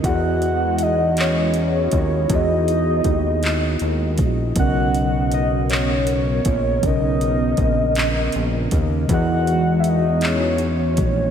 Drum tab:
HH |xxxxxx|xxxxxx|xxxxxx|xxxxxx|
CP |---x--|---x--|---x--|---x--|
BD |o----o|o-o--o|o----o|o-o--o|

HH |xxxxxx|
CP |---x--|
BD |o----o|